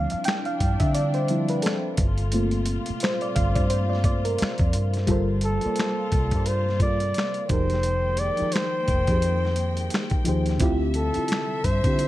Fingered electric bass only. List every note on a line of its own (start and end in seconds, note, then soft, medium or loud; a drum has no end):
0.14 muted fingered electric bass stroke soft
0.62 0.79 G2 medium
0.81 1.60 D3 medium
1.99 2.77 G1 loud
2.90 muted fingered electric bass stroke soft
3.38 3.55 G1 medium
3.57 4.36 G2 medium
4.42 muted fingered electric bass stroke soft
4.61 4.76 F2 medium
4.76 5.06 G2 medium
5.10 5.57 G1 loud
5.66 muted fingered electric bass stroke soft
6.13 6.30 C2 medium
6.33 7.12 G2 medium
7.51 8.29 F1 medium
8.42 muted fingered electric bass stroke soft
8.89 9.06 F1 medium
9.09 9.88 F2 loud
10.28 10.57 D#2 medium
10.62 11.09 D2 loud
11.17 muted fingered electric bass stroke soft
11.66 11.82 G2 medium
11.85 12.08 D3 medium